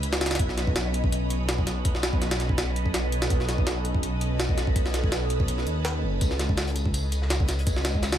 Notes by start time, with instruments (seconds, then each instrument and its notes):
Already playing: detuned saw bass C#2
0.03 closed hi-hat
0.13 snare
0.21 snare, closed hi-hat
0.26 snare, closed hi-hat
0.31 snare, closed hi-hat
0.35 snare, closed hi-hat
0.39 detuned saw bass B1, kick, closed hi-hat
0.49 snare
0.58 snare, closed hi-hat
0.67 kick
0.76 snare, closed hi-hat
0.94 closed hi-hat
1.04 kick
1.12 closed hi-hat
1.30 closed hi-hat
1.49 snare, closed hi-hat
1.58 kick
1.67 snare, closed hi-hat
1.85 detuned saw bass B1, kick, closed hi-hat
1.95 snare
2.03 snare, closed hi-hat
2.13 kick
2.22 snare, closed hi-hat
2.31 snare, closed hi-hat
2.40 snare, closed hi-hat
2.49 kick
2.58 snare, closed hi-hat
2.76 closed hi-hat
2.86 kick
2.94 snare, closed hi-hat
3.12 closed hi-hat
3.22 snare, closed hi-hat
3.30 detuned saw bass B1, kick, closed hi-hat
3.40 snare
3.49 snare, closed hi-hat
3.58 kick
3.67 snare, closed hi-hat
3.85 closed hi-hat
3.95 kick
4.03 closed hi-hat
4.21 closed hi-hat
4.40 snare, closed hi-hat
4.49 kick
4.58 snare, closed hi-hat
4.67 kick
4.76 detuned saw bass B1, kick, closed hi-hat
4.86 snare
4.94 snare, closed hi-hat
5.04 kick
5.12 snare, closed hi-hat
5.30 closed hi-hat
5.40 kick
5.48 closed hi-hat
5.58 snare
5.67 detuned saw bass D#2, closed hi-hat
5.85 snare, closed hi-hat
6.03 detuned saw bass F#1
6.21 detuned saw bass C#2, kick, closed hi-hat, tambourine
6.31 snare
6.39 snare, closed hi-hat, tambourine
6.49 kick
6.57 snare, closed hi-hat, tambourine
6.67 closed hi-hat
6.76 closed hi-hat, tambourine
6.86 kick
6.94 closed hi-hat, tambourine
7.12 closed hi-hat, tambourine
7.22 snare
7.30 snare, closed hi-hat, tambourine
7.40 kick
7.48 snare, closed hi-hat, tambourine
7.59 closed hi-hat
7.67 detuned saw bass C#2, kick, closed hi-hat, tambourine
7.76 snare
7.85 snare, closed hi-hat, tambourine
7.95 kick
8.03 snare, closed hi-hat, tambourine
8.12 snare, closed hi-hat